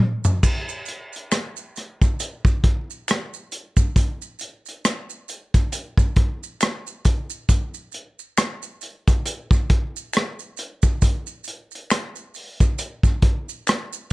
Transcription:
0.24 floor tom medium
0.24 maracas medium
0.43 kick medium
0.43 crash medium
0.43 maracas medium
0.69 maracas soft
0.86 closed hi-hat medium
0.86 maracas soft
1.13 closed hi-hat soft
1.13 maracas soft
1.32 finger snap medium
1.32 cross-stick medium
1.32 closed hi-hat medium
1.32 maracas medium
1.57 maracas soft
1.76 cross-stick soft
1.76 closed hi-hat medium
1.76 maracas soft
2.02 kick medium
2.02 cross-stick soft
2.02 maracas soft
2.20 closed hi-hat medium
2.20 maracas medium
2.45 kick medium
2.45 maracas soft
2.64 kick loud
2.64 closed hi-hat medium
2.91 maracas soft
3.08 finger snap medium
3.08 cross-stick loud
3.08 closed hi-hat medium
3.08 maracas medium
3.34 maracas soft
3.52 closed hi-hat medium
3.52 maracas soft
3.77 kick medium
3.77 maracas medium
3.96 kick medium
3.96 closed hi-hat medium
3.96 maracas medium
4.22 maracas soft
4.39 closed hi-hat medium
4.39 maracas soft
4.66 closed hi-hat soft
4.66 maracas soft
4.85 finger snap medium
4.85 cross-stick loud
4.85 closed hi-hat medium
4.85 maracas medium
5.10 maracas soft
5.28 closed hi-hat medium
5.28 maracas soft
5.54 kick medium
5.54 closed hi-hat soft
5.54 maracas soft
5.72 closed hi-hat medium
5.72 maracas medium
5.97 kick medium
5.97 maracas soft
6.16 kick medium
6.16 closed hi-hat medium
6.43 maracas soft
6.61 finger snap medium
6.61 cross-stick loud
6.61 closed hi-hat medium
6.61 maracas medium
6.87 maracas soft
7.05 kick medium
7.05 closed hi-hat medium
7.05 maracas soft
7.30 maracas medium
7.49 kick medium
7.49 closed hi-hat medium
7.49 maracas medium
7.74 maracas soft
7.92 closed hi-hat medium
7.92 maracas soft
8.19 maracas soft
8.38 finger snap medium
8.38 cross-stick loud
8.38 closed hi-hat medium
8.38 maracas medium
8.63 maracas soft
8.81 closed hi-hat medium
8.81 maracas soft
9.07 kick medium
9.07 cross-stick soft
9.07 closed hi-hat soft
9.07 maracas soft
9.26 closed hi-hat medium
9.26 maracas medium
9.51 kick medium
9.51 cross-stick soft
9.51 maracas soft
9.70 kick medium
9.70 closed hi-hat medium
9.96 maracas soft
10.13 finger snap medium
10.13 cross-stick loud
10.13 closed hi-hat medium
10.13 maracas medium
10.39 maracas soft
10.57 closed hi-hat medium
10.57 maracas soft
10.82 kick medium
10.82 maracas medium
11.02 kick medium
11.02 closed hi-hat medium
11.02 maracas medium
11.27 maracas soft
11.44 closed hi-hat medium
11.44 maracas soft
11.71 closed hi-hat soft
11.71 maracas soft
11.90 finger snap medium
11.90 cross-stick loud
11.90 closed hi-hat medium
11.90 maracas medium
12.16 maracas soft
12.34 open hi-hat soft
12.34 maracas soft
12.60 kick medium
12.60 cross-stick soft
12.60 closed hi-hat soft
12.60 maracas soft
12.78 closed hi-hat medium
12.78 maracas medium
13.03 kick medium
13.03 cross-stick soft
13.03 maracas soft
13.22 kick medium
13.22 closed hi-hat medium
13.49 maracas soft
13.67 finger snap medium
13.67 cross-stick loud
13.67 closed hi-hat medium
13.67 maracas medium
13.93 maracas soft

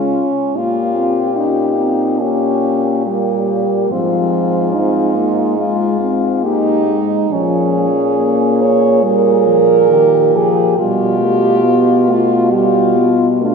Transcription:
0.00 0.24 C#3 soft
0.00 0.28 G#3 soft
0.00 0.58 C#4 medium
0.00 0.26 F4 soft
0.54 3.87 A#2 soft
0.54 0.97 A#3 soft
0.54 1.38 F4 medium
0.54 2.17 G4 soft
0.96 1.35 C4 soft
1.35 1.76 C#4 soft
1.35 2.22 D#4 medium
1.77 2.21 C4 soft
2.19 3.08 A#3 soft
2.19 3.05 C#4 medium
2.19 3.05 G4 soft
3.06 3.90 G3 medium
3.06 3.93 A#3 medium
3.06 3.93 G4 soft
3.90 7.00 G#2 medium
3.90 4.75 F3 soft
3.90 4.76 C4 medium
3.90 5.57 F4 soft
4.73 5.16 C4 medium
4.73 5.61 D#4 medium
5.14 5.58 A#3 medium
5.57 5.99 G#3 medium
5.57 6.46 F4 soft
5.57 6.18 F4 medium
6.00 6.45 C4 medium
6.44 6.87 A#3 medium
6.44 7.34 D#4 medium
6.44 7.04 G4 soft
6.86 7.29 G#3 soft
7.30 10.74 A#2 medium
7.30 7.88 F3 medium
7.30 8.63 C#4 medium
7.30 9.00 G#4 medium
8.16 9.04 A#3 medium
8.62 9.04 C#5 medium
9.02 9.48 G3 medium
9.02 9.95 G#4 medium
9.02 10.38 A#4 medium
9.47 9.92 F3 soft
9.90 10.34 D#3 medium
9.90 10.78 G4 soft
10.33 10.77 F3 soft
10.33 10.78 G#4 medium
10.78 13.55 B2 medium
10.78 11.23 G3 medium
10.78 12.50 F4 medium
10.78 12.12 G4 medium
11.21 11.66 A3 medium
11.64 12.10 B3 medium
12.08 12.54 A3 medium
12.08 12.54 F4 medium
12.52 12.98 G3 medium
12.52 13.27 F4 medium
12.52 13.14 G4 medium
12.96 13.43 B3 medium
13.41 13.55 A3 medium
13.41 13.55 D4 medium
13.41 13.55 F4 medium

